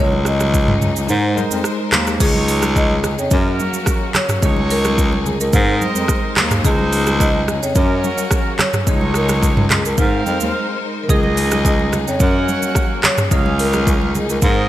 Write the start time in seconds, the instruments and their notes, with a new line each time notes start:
Already playing: tine electric piano C#3 C#4, string section C#4
0.00 bass clarinet C#2, string section C#3 D#4 G#4, tine electric piano G#4 D#5, marimba C#5
0.12 high conga
0.25 marimba D#5, cross-stick, shaker
0.40 cross-stick, high conga, shaker
0.54 kick, shaker
0.68 mid tom, high conga
0.82 mid tom, high conga, low conga, shaker
0.96 bass clarinet C#2, shaker
1.08 bass clarinet G#2, tine electric piano G#3 D#4 A#4 C5, string section G#3 A#4 C5, low conga, shaker
1.36 tine electric piano G#3 D#4 A#4 C5, high conga, shaker
1.51 bass clarinet F2, high conga, shaker
1.64 cross-stick, shaker
1.92 bass clarinet D#2, cross-stick, clap, high conga, low conga, shaker
2.07 cross-stick, shaker
2.19 bass clarinet C#2, tine electric piano C#3 C#4 G#4 D#5, string section C#3 C#4 D#4 G#4, horn section G#3 D#4 C#5, marimba G#4, kick, crash, low conga, shaker
2.35 high conga
2.48 open hi-hat, shaker
2.62 cross-stick, high conga, shaker
2.76 marimba D#5, kick, shaker
2.90 high conga
3.04 cross-stick, high conga, low conga, shaker
3.18 bass clarinet F2, marimba C#5, shaker
3.30 bass clarinet F#2, tine electric piano F#3 F#4 A#4 C#5, horn section F#3 C#4 A#4, string section A#3 C#4 F#4, kick, low conga, shaker
3.60 high conga, shaker
3.73 high conga, shaker
3.86 kick, cross-stick, shaker
4.15 marimba C#5, cross-stick, clap, high conga, low conga, shaker
4.29 cross-stick, mid tom, shaker
4.41 bass clarinet C#2, tine electric piano C#3 C#4 G#4 D#5, string section C#3 C#4 D#4 G#4, horn section G#3 D#4 C#5, kick, low conga, shaker
4.56 high conga
4.70 marimba A#4, open hi-hat, shaker
4.84 cross-stick, high conga, shaker
4.98 kick, shaker
5.12 high conga
5.26 marimba G#4, high conga, low conga, shaker
5.40 bass clarinet C#2, marimba A#4, shaker
5.52 bass clarinet G#2, tine electric piano G#3 D#4 A#4 C5, string section G#3 D#4 A#4 C5, horn section C4 A#4 D#5, kick, low conga, shaker
5.82 high conga, shaker
5.95 bass clarinet F2, high conga, shaker
6.08 kick, cross-stick, shaker
6.37 bass clarinet D#2, cross-stick, clap, high conga, low conga, shaker
6.51 cross-stick, mid tom, shaker
6.63 bass clarinet C#2, tine electric piano C#3 C#4 G#4 D#5, string section C#3 C#4 G#4, horn section G#3 D#4 C5, marimba G#4, kick, low conga, shaker
6.79 high conga
6.93 open hi-hat, shaker
7.06 cross-stick, high conga, shaker
7.20 marimba D#5, kick, shaker
7.35 high conga
7.48 cross-stick, high conga, low conga, shaker
7.62 bass clarinet F2, marimba C#5, shaker
7.75 bass clarinet F#2, tine electric piano F#3 F#4 A#4 C#5, horn section F#3 C#4 A#4, string section A#3 F#4, kick, low conga, shaker
8.04 high conga, shaker
8.18 high conga, shaker
8.31 kick, cross-stick, shaker
8.59 marimba C#5, cross-stick, clap, high conga, low conga, shaker
8.73 cross-stick, mid tom, shaker
8.86 bass clarinet C#2, tine electric piano C#3 C#4 G#4 D#5, string section C#3 D#4 G#4, horn section G#3 D#4 C#5, kick, low conga, shaker
9.01 high conga
9.14 marimba A#4, cross-stick, shaker
9.29 cross-stick, high conga, shaker
9.43 kick, shaker
9.57 mid tom, high conga
9.70 marimba G#4, cross-stick, clap, mid tom, high conga, low conga, shaker
9.85 bass clarinet C#2, marimba A#4, shaker
9.97 bass clarinet G#2, tine electric piano G#3 D#4 A#4 B4, string section G#3 D#4 A#4 C5, horn section C4 A#4 F5, kick, low conga, shaker
10.06 tine electric piano C5
10.26 bass clarinet F2, high conga, shaker
10.40 bass clarinet D#2, high conga, shaker
11.03 marimba A#4
11.08 bass clarinet C#2, tine electric piano C#3 C#4 G#4 D#5, string section C#3 C#4 D#4 G#4, horn section G#4 D#5, marimba G#4, kick, low conga, shaker
11.23 high conga
11.37 open hi-hat, shaker
11.51 cross-stick, high conga, shaker
11.65 marimba D#5, kick, shaker
11.79 high conga
11.93 cross-stick, high conga, low conga, shaker
12.07 bass clarinet F2, marimba C#5, shaker
12.19 bass clarinet F#2, tine electric piano F#3 F#4 A#4 C#5, string section A#3 F#4, horn section C#4 A#4 F#5, kick, low conga, shaker
12.48 high conga, shaker
12.62 high conga, shaker
12.75 kick, cross-stick, shaker
13.03 marimba C#5, cross-stick, clap, high conga, low conga, shaker
13.18 cross-stick, mid tom, shaker
13.30 bass clarinet C#2, tine electric piano C#3 C#4 G#4 D#5, string section C#3 D#4 G#4, horn section C#4 G#4 F5, kick, low conga, shaker
13.46 high conga
13.59 marimba A#4, open hi-hat, shaker
13.73 cross-stick, high conga, shaker
13.87 kick, shaker
14.02 high conga
14.15 marimba G#4, high conga, low conga, shaker
14.29 bass clarinet C#2, marimba A#4, shaker
14.41 bass clarinet G#2, tine electric piano G#3 D#4 A#4 C5, string section G#3 A#4 C5, horn section C4 A#4 D#5, kick, low conga, shaker